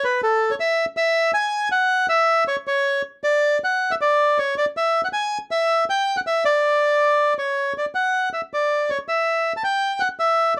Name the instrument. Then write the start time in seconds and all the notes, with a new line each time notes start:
bandoneon
0.04 B4
0.23 A4
0.51 C#5
0.60 E5
0.97 E5
1.34 G#5
1.72 F#5
2.09 E5
2.48 C#5
2.67 C#5
3.24 D5
3.64 F#5
3.91 E5
4.01 D5
4.39 C#5
4.58 D5
4.77 E5
5.04 F#5
5.13 G#5
5.51 E5
5.90 G5
6.17 F#5
6.27 E5
6.45 D5
7.39 C#5
7.78 D5
7.95 F#5
8.33 E5
8.54 D5
8.90 C#5
9.08 E5
9.57 A5
9.64 G5
10.00 F#5
10.19 E5